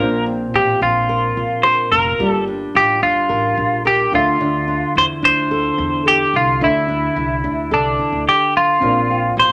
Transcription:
Already playing: nylon-string guitar F3 C4 F4, upright piano A#3, clean electric guitar A#4
0.00 upright bass A#1, nylon-string guitar A#2, upright piano D4 F4 C5
0.26 nylon-string guitar C4
0.54 upright bass A1, nylon-string guitar F4, clean electric guitar G4
0.81 upright bass A#1, nylon-string guitar C4, clean electric guitar F4
1.09 nylon-string guitar A#4
1.37 upright bass A#1, nylon-string guitar F4
1.63 nylon-string guitar A#4, clean electric guitar C5
1.92 upright bass F1, nylon-string guitar F4, clean electric guitar A#4
2.18 upright bass G1, nylon-string guitar G3, upright piano A#3 F4 G4
2.22 upright piano D5
2.30 clean electric guitar A4
2.48 nylon-string guitar D4
2.75 upright bass A1, nylon-string guitar F4, clean electric guitar G4
3.02 upright bass G1, nylon-string guitar D4, clean electric guitar F4
3.29 upright bass A1, nylon-string guitar A#4
3.57 upright bass A#1, nylon-string guitar F4
3.85 clean electric guitar G4, nylon-string guitar A#4
4.11 upright bass D2, nylon-string guitar D3, upright piano D4 F4 A4, clean electric guitar F4
4.16 upright piano E5
4.41 nylon-string guitar D3
4.68 nylon-string guitar D4
4.96 upright bass E2, nylon-string guitar E4, clean electric guitar C5
5.22 upright bass D2, nylon-string guitar D4, clean electric guitar C5
5.51 nylon-string guitar A4
5.78 upright bass E2, nylon-string guitar E4
6.06 clean electric guitar G4, nylon-string guitar A4
6.34 upright bass C2, nylon-string guitar E4, clean electric guitar F4
6.59 upright bass D2, nylon-string guitar D3, upright piano D4 E4 A4
6.63 clean electric guitar E4, upright piano E5
6.88 nylon-string guitar D4
7.16 upright bass C2, nylon-string guitar E4
7.44 upright bass D2, nylon-string guitar D4
7.71 upright bass C2, clean electric guitar D4, nylon-string guitar A4
7.99 nylon-string guitar E4, muted upright bass stroke
8.12 upright bass D2
8.29 clean electric guitar G4
8.57 clean electric guitar F4
8.80 upright bass A#1, nylon-string guitar A#2, upright piano C4 D4 F4 A#4
8.84 upright piano D5
9.10 nylon-string guitar C4
9.37 upright bass A1, nylon-string guitar F4, clean electric guitar C5

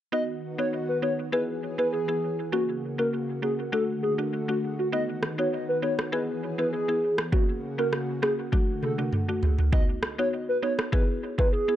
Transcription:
0.12 analog synth pad D#3 B3 F#4, synth pluck B3 D#4 F#4, soft synth lead D#5
0.58 synth pluck B3 D#4 F#4, soft synth lead C#5
0.89 soft synth lead B4
1.02 synth pluck B3 D#4 F#4, soft synth lead C#5
1.32 analog synth pad E3 B3 G#4, synth pluck B3 E4 G#4, soft synth lead B4
1.78 synth pluck B3 E4 G#4, soft synth lead B4
1.93 soft synth lead G#4
2.08 synth pluck B3 E4 G#4
2.52 analog synth pad C#3 A#3 F#4, synth pluck A#3 C#4 F#4, soft synth lead F#4
2.98 synth pluck A#3 C#4 F#4, soft synth lead A#4
3.42 synth pluck A#3 C#4 F#4, soft synth lead G#4
3.72 analog synth pad D3 A3, synth pluck A3 D4 F#4, soft synth lead A4
4.03 soft synth lead G#4
4.18 synth pluck A3 D4 F#4
4.48 synth pluck A3 D4 F#4, soft synth lead F#4
4.79 soft synth lead F#4
4.92 analog synth pad D#3 B3, synth pluck B3 D#4 F#4, soft synth lead D#5
5.23 cross-stick
5.38 synth pluck B3 D#4 F#4, soft synth lead C#5
5.69 soft synth lead B4
5.82 synth pluck B3 D#4 F#4, soft synth lead C#5
5.99 cross-stick
6.12 analog synth pad E3 G#4, synth pluck B3 E4 G#4, soft synth lead B4
6.58 synth pluck B3 E4 G#4, soft synth lead B4
6.73 soft synth lead G#4
6.88 synth pluck B3 E4 G#4
7.18 cross-stick
7.32 analog synth pad C#3 A#3 F#4, synth pluck A#3 C#4 F#4, soft synth lead F#4, kick
7.78 synth pluck A#3 C#4 F#4, soft synth lead A#4
7.93 cross-stick
8.22 synth pluck A#3 C#4 F#4, soft synth lead G#4, cross-stick
8.52 analog synth pad D3 A3 F#4, synth pluck A3 D4 F#4, kick, high tom
8.83 soft synth lead A4, mid tom
8.98 synth pluck A3 D4 F#4, mid tom
9.13 mid tom
9.28 synth pluck A3 D4 F#4
9.43 floor tom
9.59 floor tom
9.72 synth pluck B3 D#4 F#4, soft synth lead D#5, kick
10.03 cross-stick
10.18 synth pluck B3 D#4 F#4, soft synth lead C#5
10.49 soft synth lead B4
10.62 synth pluck B3 D#4 F#4, soft synth lead C#5
10.79 cross-stick
10.92 synth pluck B3 E4 G#4, soft synth lead B4, kick
11.38 synth pluck B3 E4 G#4, soft synth lead B4, kick
11.53 soft synth lead G#4
11.68 synth pluck B3 E4 G#4

